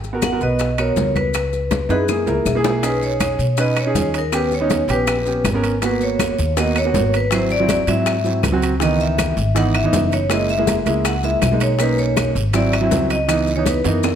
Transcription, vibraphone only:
0.24 0.32 F#5 loud
0.43 0.81 D#5 medium
0.79 1.14 C#5 medium
1.16 1.93 B4 medium
1.90 2.61 G#4 medium
2.86 3.04 B4 medium
3.04 3.61 C#5 medium
3.61 3.77 D#5 medium
3.80 4.17 C#5 medium
4.18 4.34 A#4 medium
4.36 4.52 B4 medium
4.55 4.92 C#5 medium
4.92 5.43 B4 medium
5.86 6.03 B4 medium
6.03 6.54 C#5 medium
6.59 6.77 D#5 medium
6.78 7.15 C#5 medium
7.16 7.34 B4 medium
7.35 7.51 C5 medium
7.52 7.86 D5 loud
7.89 8.40 E5 medium
8.83 9.01 D#5 medium
9.01 9.52 E5 medium
9.57 9.75 F#5 medium
9.75 10.13 E5 loud
10.13 10.32 C#5 medium
10.32 10.49 D#5 medium
10.50 11.02 E5 loud
11.06 11.14 F#5 medium
11.24 11.59 E5 loud
11.62 11.79 C#5 medium
11.81 11.98 B4 medium
11.99 12.34 C#5 medium
12.56 12.73 D5 medium
12.74 13.12 E5 medium
13.11 13.52 D#5 medium
13.56 13.68 C#5 medium
13.67 13.86 B4 medium
13.87 14.15 A#4 medium

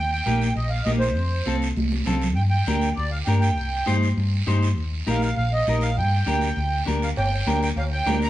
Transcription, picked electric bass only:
0.00 0.20 D#2 medium
0.26 0.50 A#1 medium
0.56 0.80 A#1 medium
0.86 1.16 A#1 medium
1.16 1.40 F2 medium
1.47 1.71 C2 medium
1.77 2.01 C2 medium
2.07 2.37 C2 medium
2.37 2.61 G2 medium
2.67 2.91 D2 medium
2.97 3.21 D2 medium
3.27 3.57 G2 medium
3.57 3.81 C2 medium
3.88 4.12 G2 medium
4.17 4.41 G2 medium
4.47 4.78 G2 medium
4.78 5.01 D#2 medium
5.07 5.31 A#1 medium
5.37 5.61 A#1 medium
5.67 5.99 A#1 medium
5.97 6.21 G2 medium
6.26 6.51 D2 medium
6.57 6.81 D2 medium
6.87 7.11 D2 medium
7.17 7.41 G1 loud
7.47 7.71 D2 medium
7.76 8.00 D2 loud
8.06 8.30 D2 medium

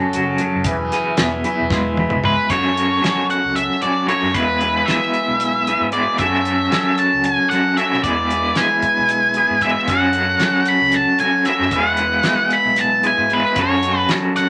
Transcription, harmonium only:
0.00 0.64 F#4 medium
0.00 0.64 A4 medium
0.00 0.64 C#5 medium
0.00 0.64 A5 medium
0.66 2.48 E4 medium
0.66 2.48 G#4 medium
0.66 2.49 B4 medium
0.66 2.49 G#5 medium
2.51 4.34 F#4 medium
2.51 4.34 A4 medium
2.51 4.34 C#5 medium
2.51 4.34 A5 medium
4.35 6.18 E4 medium
4.35 6.18 G#4 medium
4.35 6.18 B4 medium
4.35 6.18 G#5 medium
6.23 8.04 F#4 medium
6.23 8.04 A4 medium
6.23 8.04 C#5 medium
6.23 8.04 A5 medium
8.05 9.87 E4 medium
8.05 9.88 G#4 medium
8.05 9.88 B4 medium
8.05 9.87 G#5 medium
9.90 11.72 F#4 medium
9.90 11.73 A4 medium
9.90 11.72 C#5 medium
9.90 11.72 A5 medium
11.73 13.56 E4 medium
11.73 13.56 G#4 medium
11.73 13.56 B4 medium
11.73 13.56 G#5 medium
13.60 14.49 F#4 medium
13.60 14.49 A4 medium
13.60 14.49 C#5 medium
13.60 14.49 A5 medium

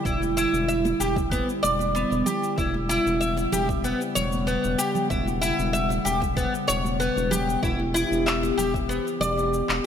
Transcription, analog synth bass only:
0.05 0.47 E1 medium
0.53 0.94 E1 medium
1.00 1.41 E1 medium
1.63 2.05 E1 medium
2.11 2.22 E1 medium
2.58 2.99 E1 loud
3.06 3.47 E1 medium
3.53 3.94 E1 medium
4.16 4.57 E1 medium
4.65 4.75 E1 medium
5.10 5.52 E1 loud
5.59 5.99 E1 medium
6.05 6.47 E1 medium
6.69 7.10 E1 medium
7.17 7.57 E1 loud
7.63 8.04 E1 loud
8.11 8.52 E1 medium
8.58 8.99 E1 medium
9.20 9.62 E1 medium
9.69 9.80 E1 medium

